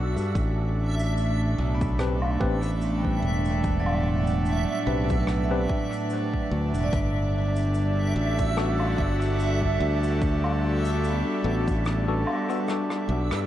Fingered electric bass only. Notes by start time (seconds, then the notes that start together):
Already playing: B1
0.17 G2
0.35 A1
1.58 B1
2.41 A1
3.22 E1
4.87 B1
6.51 D2
6.74 E1
6.93 G1
8.16 A1
8.98 G1
9.80 D2
11.44 A1
13.09 B1
13.32 G2